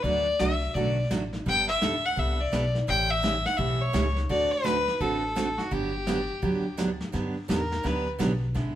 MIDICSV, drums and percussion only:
0, 0, Header, 1, 2, 480
1, 0, Start_track
1, 0, Key_signature, 1, "major"
1, 0, Tempo, 354820
1, 53, Time_signature, 4, 2, 24, 8
1, 11840, End_track
2, 0, Start_track
2, 0, Title_t, "Drums"
2, 52, Note_on_c, 9, 36, 34
2, 56, Note_on_c, 9, 25, 47
2, 187, Note_off_c, 9, 36, 0
2, 532, Note_on_c, 9, 38, 68
2, 532, Note_on_c, 9, 44, 57
2, 667, Note_off_c, 9, 38, 0
2, 667, Note_off_c, 9, 44, 0
2, 1016, Note_on_c, 9, 36, 36
2, 1022, Note_off_c, 9, 25, 0
2, 1022, Note_on_c, 9, 25, 49
2, 1152, Note_off_c, 9, 36, 0
2, 1497, Note_on_c, 9, 38, 65
2, 1497, Note_on_c, 9, 44, 65
2, 1632, Note_off_c, 9, 38, 0
2, 1632, Note_off_c, 9, 44, 0
2, 1795, Note_on_c, 9, 38, 37
2, 1931, Note_off_c, 9, 38, 0
2, 1978, Note_on_c, 9, 36, 31
2, 1987, Note_off_c, 9, 25, 0
2, 1987, Note_on_c, 9, 25, 49
2, 2114, Note_off_c, 9, 36, 0
2, 2458, Note_on_c, 9, 38, 76
2, 2458, Note_on_c, 9, 44, 64
2, 2593, Note_off_c, 9, 38, 0
2, 2593, Note_off_c, 9, 44, 0
2, 2940, Note_on_c, 9, 36, 36
2, 2941, Note_off_c, 9, 25, 0
2, 2941, Note_on_c, 9, 25, 53
2, 3076, Note_off_c, 9, 36, 0
2, 3418, Note_on_c, 9, 38, 72
2, 3418, Note_on_c, 9, 44, 66
2, 3554, Note_off_c, 9, 38, 0
2, 3554, Note_off_c, 9, 44, 0
2, 3718, Note_on_c, 9, 38, 35
2, 3854, Note_off_c, 9, 38, 0
2, 3899, Note_on_c, 9, 36, 31
2, 3903, Note_off_c, 9, 25, 0
2, 3903, Note_on_c, 9, 25, 43
2, 4035, Note_off_c, 9, 36, 0
2, 4380, Note_on_c, 9, 38, 71
2, 4380, Note_on_c, 9, 44, 60
2, 4516, Note_off_c, 9, 38, 0
2, 4516, Note_off_c, 9, 44, 0
2, 4676, Note_on_c, 9, 38, 39
2, 4812, Note_off_c, 9, 38, 0
2, 4854, Note_on_c, 9, 36, 39
2, 4856, Note_off_c, 9, 25, 0
2, 4856, Note_on_c, 9, 25, 56
2, 4990, Note_off_c, 9, 36, 0
2, 5329, Note_on_c, 9, 38, 75
2, 5329, Note_on_c, 9, 44, 56
2, 5465, Note_off_c, 9, 38, 0
2, 5465, Note_off_c, 9, 44, 0
2, 5634, Note_on_c, 9, 38, 40
2, 5770, Note_off_c, 9, 38, 0
2, 5814, Note_on_c, 9, 36, 30
2, 5820, Note_off_c, 9, 25, 0
2, 5820, Note_on_c, 9, 25, 37
2, 5949, Note_off_c, 9, 36, 0
2, 6291, Note_on_c, 9, 38, 65
2, 6291, Note_on_c, 9, 44, 60
2, 6426, Note_off_c, 9, 38, 0
2, 6426, Note_off_c, 9, 44, 0
2, 6598, Note_on_c, 9, 38, 40
2, 6734, Note_off_c, 9, 38, 0
2, 6771, Note_off_c, 9, 25, 0
2, 6771, Note_on_c, 9, 25, 55
2, 6772, Note_on_c, 9, 36, 35
2, 6907, Note_off_c, 9, 36, 0
2, 7255, Note_on_c, 9, 38, 63
2, 7255, Note_on_c, 9, 44, 69
2, 7390, Note_off_c, 9, 38, 0
2, 7390, Note_off_c, 9, 44, 0
2, 7551, Note_on_c, 9, 38, 40
2, 7687, Note_off_c, 9, 38, 0
2, 7732, Note_off_c, 9, 25, 0
2, 7732, Note_on_c, 9, 25, 41
2, 7733, Note_on_c, 9, 36, 30
2, 7868, Note_off_c, 9, 36, 0
2, 8210, Note_on_c, 9, 38, 69
2, 8210, Note_on_c, 9, 44, 53
2, 8345, Note_off_c, 9, 38, 0
2, 8345, Note_off_c, 9, 44, 0
2, 8696, Note_on_c, 9, 36, 39
2, 8700, Note_off_c, 9, 25, 0
2, 8700, Note_on_c, 9, 25, 57
2, 8831, Note_off_c, 9, 36, 0
2, 9176, Note_on_c, 9, 38, 68
2, 9176, Note_on_c, 9, 44, 61
2, 9312, Note_off_c, 9, 38, 0
2, 9312, Note_off_c, 9, 44, 0
2, 9476, Note_on_c, 9, 38, 42
2, 9611, Note_off_c, 9, 38, 0
2, 9653, Note_off_c, 9, 25, 0
2, 9653, Note_on_c, 9, 25, 42
2, 9653, Note_on_c, 9, 38, 40
2, 9655, Note_on_c, 9, 36, 19
2, 9788, Note_off_c, 9, 38, 0
2, 9790, Note_off_c, 9, 36, 0
2, 10138, Note_on_c, 9, 36, 20
2, 10141, Note_on_c, 9, 38, 74
2, 10141, Note_on_c, 9, 44, 69
2, 10273, Note_off_c, 9, 36, 0
2, 10276, Note_off_c, 9, 38, 0
2, 10276, Note_off_c, 9, 44, 0
2, 10443, Note_on_c, 9, 38, 48
2, 10578, Note_off_c, 9, 38, 0
2, 10618, Note_on_c, 9, 36, 24
2, 10620, Note_off_c, 9, 25, 0
2, 10620, Note_on_c, 9, 25, 65
2, 10620, Note_on_c, 9, 38, 53
2, 10754, Note_off_c, 9, 36, 0
2, 10756, Note_off_c, 9, 38, 0
2, 11093, Note_on_c, 9, 38, 71
2, 11093, Note_on_c, 9, 44, 61
2, 11095, Note_on_c, 9, 36, 22
2, 11228, Note_off_c, 9, 38, 0
2, 11228, Note_off_c, 9, 44, 0
2, 11230, Note_off_c, 9, 36, 0
2, 11572, Note_off_c, 9, 25, 0
2, 11572, Note_on_c, 9, 25, 48
2, 11572, Note_on_c, 9, 38, 37
2, 11574, Note_on_c, 9, 36, 22
2, 11707, Note_off_c, 9, 38, 0
2, 11709, Note_off_c, 9, 36, 0
2, 11840, Note_off_c, 9, 25, 0
2, 11840, End_track
0, 0, End_of_file